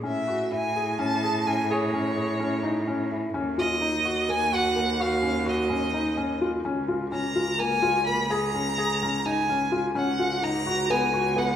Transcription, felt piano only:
0.04 C#4
0.28 F#4
0.52 E4
0.76 G#4
0.99 C#4
1.23 G#4
1.46 C#4
1.70 G#4
1.94 C#4
2.16 G#4
2.40 C#4
2.63 D#4
2.88 C#4
3.11 E4
3.34 C#4
3.58 F4
3.81 D#4
4.05 F#4
4.29 A#3
4.52 F#4
4.76 A#3
5.00 F#4
5.23 C#4
5.46 F#4
5.70 C#4
5.94 D#4
6.17 C#4
6.41 F4
6.65 C#4
6.88 F4
7.12 C#4
7.36 F4
7.59 A#3
7.82 F4
8.07 A#3
8.30 G#4
8.54 C#4
8.78 G#4
9.02 C#4
9.26 D#4
9.49 C#4
9.72 F4
9.95 C#4
10.19 F4
10.43 D#4
10.66 F#4
10.90 B3
11.14 F#4
11.36 B3

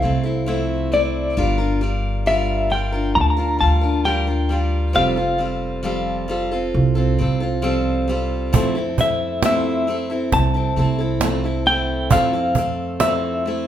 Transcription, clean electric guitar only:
Already playing: F5
0.94 D5
2.27 E5
2.72 G5
3.15 A#5
3.21 A5
3.30 A#5
3.61 A5
4.05 G5
4.96 F5
9.01 E5
9.46 E5
10.34 A5
11.67 G5
12.12 F5
13.01 E5

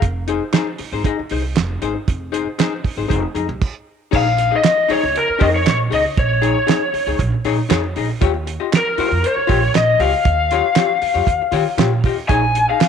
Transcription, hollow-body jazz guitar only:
0.28 D#4 G#4 C5
0.53 D#4 G#4 C5
0.79 muted hollow-body jazz guitar stroke
0.93 D#4 G#4 C5
1.05 D#4 G#4 D#5
1.19 muted hollow-body jazz guitar stroke
1.31 D#4 G#4 C5
1.44 muted hollow-body jazz guitar stroke
1.55 muted hollow-body jazz guitar stroke
1.70 muted hollow-body jazz guitar stroke
1.82 D#4 G#4 C5
1.96 muted hollow-body jazz guitar stroke
2.32 D#4 G#4 C5
2.58 D#4 G#4 C5
2.84 muted hollow-body jazz guitar stroke
2.98 D#4 G#4 C5
3.08 D#4 G#4 C5
3.21 muted hollow-body jazz guitar stroke
3.35 D#4 G#4 D#5
3.48 muted hollow-body jazz guitar stroke
4.11 D#4 G#4 C#5
4.26 muted hollow-body jazz guitar stroke
4.38 muted hollow-body jazz guitar stroke
4.51 D#4 G#4 D#5
4.64 muted hollow-body jazz guitar stroke
4.76 muted hollow-body jazz guitar stroke
4.88 D#4 G#4 C#5
5.03 muted hollow-body jazz guitar stroke
5.15 muted hollow-body jazz guitar stroke
5.27 muted hollow-body jazz guitar stroke
5.39 D#4 G#4 C#5
5.53 muted hollow-body jazz guitar stroke
5.65 muted hollow-body jazz guitar stroke
5.90 D#4 G#4 C#5
6.04 muted hollow-body jazz guitar stroke
6.42 D#4 G#4 C#5
6.67 D#4 G#4 C#5
6.93 muted hollow-body jazz guitar stroke
7.07 D#4 G#4 C#5
7.33 muted hollow-body jazz guitar stroke
7.45 D#4 G#4 C#5
7.59 muted hollow-body jazz guitar stroke
7.69 D#4 G#4 C#5
7.84 muted hollow-body jazz guitar stroke
7.96 D#4 G#4 D#5
8.10 muted hollow-body jazz guitar stroke
8.21 F4 G4 C#5
8.34 muted hollow-body jazz guitar stroke
8.46 muted hollow-body jazz guitar stroke
8.60 F4 G4 D#5
8.72 muted hollow-body jazz guitar stroke
8.87 muted hollow-body jazz guitar stroke
8.98 F4 G4 C#5
9.11 muted hollow-body jazz guitar stroke
9.23 muted hollow-body jazz guitar stroke
9.36 muted hollow-body jazz guitar stroke
9.47 F4 G4 C#5
9.62 muted hollow-body jazz guitar stroke
9.74 muted hollow-body jazz guitar stroke
10.00 F4 G4 C#5
10.14 muted hollow-body jazz guitar stroke
10.52 F4 G4 C#5
10.76 F4 G4 C#5
11.02 muted hollow-body jazz guitar stroke
11.14 F4 G4 C#5
11.42 muted hollow-body jazz guitar stroke
11.52 F4 G4 C#5
11.78 F4 G4 C#5
11.93 muted hollow-body jazz guitar stroke
12.05 F4 G4 D#5
12.19 muted hollow-body jazz guitar stroke
12.30 D#4 G#4 C#5
12.44 muted hollow-body jazz guitar stroke
12.57 muted hollow-body jazz guitar stroke
12.70 D#4 G#4 D#5
12.82 muted hollow-body jazz guitar stroke

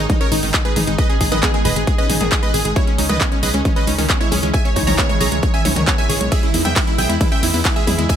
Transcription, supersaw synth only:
0.10 D#4
0.21 A#4 C#5
0.32 D#4
0.43 D#4
0.54 D#4
0.65 G#4 B4
0.76 D#4
0.87 D#4
0.98 B4 D#5
1.09 G#4
1.21 G#4
1.32 B4 D#5
1.43 G#4
1.54 G#4
1.65 B4 D#5
1.76 G#4
1.87 G#4
1.98 B4 D#5
2.10 G#4
2.21 G#4
2.32 G#4
2.43 B4 D#5
2.54 G#4
2.65 G#4
2.76 E4 C#5
2.87 C#4
2.98 C#4
3.09 B4 D#5
3.21 C#4
3.32 C#4
3.43 B4 D#5
3.54 C#4
3.65 C#4
3.76 B4 D#5
3.87 C#4
3.98 C#4
4.10 C#4
4.21 E4 C#5
4.32 C#4
4.43 C#4
4.54 E5 G#5
4.65 C#5
4.76 C#5
4.87 C#5 A#5
4.98 C#5
5.09 C#5
5.20 C#5 A#5
5.32 C#5
5.43 C#5
5.54 E5 G#5
5.65 C#5
5.76 C#5
5.87 C#5
5.98 E5 G#5
6.09 C#5
6.21 C#5
6.32 G#4 E5
6.43 E4
6.54 E4
6.65 E5 G5
6.76 E4
6.87 E4
6.98 E5 G5
7.09 E4
7.21 E4
7.32 E5 G5
7.43 E4
7.54 E4
7.65 E4
7.76 G#4 E5
7.87 E4
7.98 E4
8.09 E5 G#5

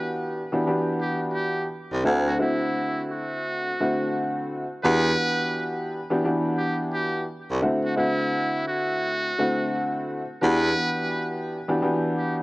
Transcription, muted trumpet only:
Already playing: B4
1.01 G4
1.34 G4
2.27 F#4
2.41 E4
3.11 F#4
4.84 B4
6.58 G4
6.94 G4
7.85 F#4
7.98 E4
8.68 F#4
10.43 B4
12.18 G4

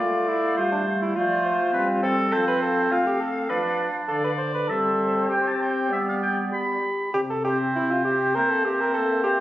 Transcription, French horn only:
0.00 A3
0.57 G3
1.16 F3
1.75 G3
2.34 F3
2.92 A3
3.50 F3
4.09 D3
4.69 G3
5.30 C4
5.91 G3
6.53 G4
7.14 C3
7.74 C3
8.34 A#3
8.94 A#3

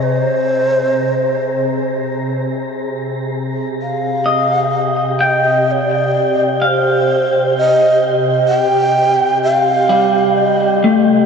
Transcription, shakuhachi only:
0.03 C5
3.82 F5
5.25 D#5
5.71 C#5
5.84 D5
6.66 C5
7.58 D#5
8.48 G5
9.44 F5
10.37 D#5

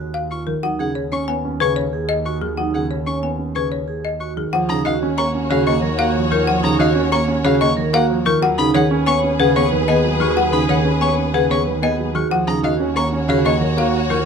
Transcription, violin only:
0.31 C#6
0.80 F#5
1.12 C#6
1.61 C#6
2.25 C#6
2.74 F#5
3.06 C#6
3.55 C#6
4.20 C#6
4.69 A#5
4.85 F5
5.18 C#6
5.50 F5
5.66 C#6
5.99 F#5
6.31 C#6
6.64 A#5
6.80 F5
7.12 C#6
7.45 F5
7.61 C#6
7.93 F#5
8.25 C#6
8.58 B5
8.74 F#5
9.07 C#6
9.40 F#5
9.56 C#6
9.88 G#5
10.20 C#6
10.52 B5
10.69 F#5
11.01 C#6
11.34 F#5
11.50 C#6
11.83 G#5
12.15 C#6
12.47 A#5
12.64 F5
12.96 C#6
13.28 F5
13.45 C#6
14.10 C#6

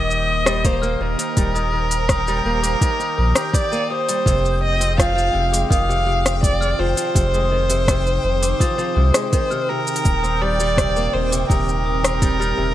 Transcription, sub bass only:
Already playing: D#1
1.00 D#1
1.37 D#1
2.45 D#1
3.18 A#1
4.26 F1
5.35 F1
5.71 F1
6.79 F1
7.15 F1
8.24 F1
8.96 C2
10.05 D#1
11.14 D#1
11.50 D#1
12.59 D#1

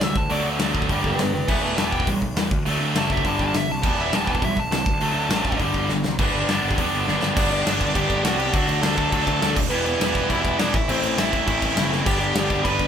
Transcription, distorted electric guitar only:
0.01 E3 G3
0.30 D3 F#3 A3
0.60 D3 F#3 A3
0.89 G2 D3 G3
1.19 G2 D3
1.48 E3 G3 B3
1.78 E3 G3 B3
2.07 E3 G3
2.38 E3 G3
2.66 D3 F#3 A3
2.95 D3 F#3 A3
3.25 G2 D3 G3
3.54 G2 D3
3.83 E3 G3 B3
4.12 E3 G3 B3
4.42 E3 G3
4.72 E3 G3
5.02 D3 F#3 A3
5.31 D3 F#3 A3
5.59 G2 D3 G3
5.89 G2 D3
6.19 G2 D3 G3 B3 D4
6.49 G2 D3 G3 B3 D4
6.78 G2 D3 G3 B3 D4
7.08 G2 D3 G3 B3 D4
7.36 G2 D3 G3 B3 D4
7.65 G2 D3 G3 B3 D4
7.94 G2 D3 G3 B3 D4
8.24 G2 D3 G3 B3 D4
8.53 D3 F#3 A3 D4
8.83 D3 F#3 A3 D4
9.13 D3 F#3 A3 D4
9.42 D3 F#3 A3 D4
9.70 E3 G3 B3 E4
10.01 E3 G3 B3 E4
10.29 E3 G3 B3 E4
10.59 E3 G3 B3 E4
10.88 A2 E3 A3 C4 E4
11.18 A2 E3 A3 C4 E4
11.48 A2 E3 A3 C4 E4
11.78 A2 E3 A3 C4 E4
12.07 G2 D3 G3 B3 D4
12.36 G2 D3 G3 B3 D4
12.65 G2 D3 G3 B3 D4

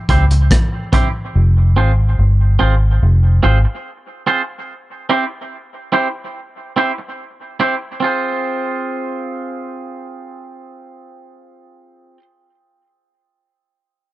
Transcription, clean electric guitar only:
0.09 C4 E4 G4 C5
0.32 muted clean electric guitar stroke
0.93 C4 E4 G4 C5
1.76 C4 F4 G#4 C5
2.59 C4 F4 G#4 C5
3.43 C4 F4 G#4 C5
3.65 muted clean electric guitar stroke
4.27 C4 F4 G#4 C5
5.09 C4 E4 G4 C5
5.92 C4 E4 G4 C5
6.76 C4 E4 G4 C5
6.98 muted clean electric guitar stroke
7.60 C4 E4 G4 C5
8.00 C4 F4 G#4
8.05 C5

